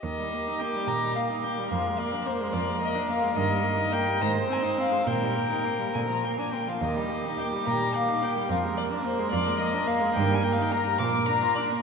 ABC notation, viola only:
X:1
M:6/8
L:1/16
Q:3/8=71
K:Eb
V:1 name="Viola"
E, G, B, E B, G, E, G, B, E B, G, | F, A, B, D B, A, F, A, B, D B, A, | E, G, B, E B, G, E, A, C E C A, | E, G, B, E B, G, D, F, B, D B, F, |
E, G, B, E B, G, E, G, B, E B, G, | F, A, B, D B, A, F, A, B, D B, A, | E, G, B, E B, G, F, B, D F D B, |]